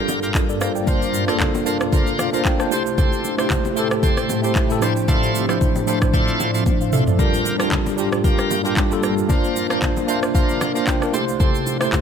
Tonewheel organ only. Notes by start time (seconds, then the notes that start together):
Already playing: F4 G4 A#4
0.23 F4 G4 A#4
0.61 F4 G4 A#4
0.87 D4 F4 A#4 C5
1.28 D4 F4 A#4 C5
1.66 D4 F4 A#4 C5
1.92 D4 F4 A#4 C5
2.33 D4 F4 A#4 C5
2.72 G4 A4 C5
2.98 G4 A4 C5
3.39 G4 A4 C5
3.77 G4 A4 C5
4.03 G4 A4 C5
4.44 G4 A4 C5
4.82 A3 D4 E4 F4 C5
5.08 A3 D4 E4 F4 C5
5.49 A3 D4 E4 F4 C5
5.87 A3 D4 E4 F4 C5
6.13 A3 D4 E4 F4 C5
6.54 A3 D4 E4 F4 C5
6.93 A3 D4 E4 F4 C5
7.19 F4 G4 A#4
7.60 F4 G4 A#4
7.98 F4 G4 A#4
8.24 F4 G4 A#4
8.65 F4 G4 A#4
9.03 F4 G4 A#4
9.29 D4 F4 A#4 C5
9.70 D4 F4 A#4 C5
10.08 D4 F4 A#4 C5
10.35 D4 F4 A#4 C5
10.75 D4 F4 A#4 C5
11.13 G4 A4 C5
11.40 G4 A4 C5
11.81 G4 A4 C5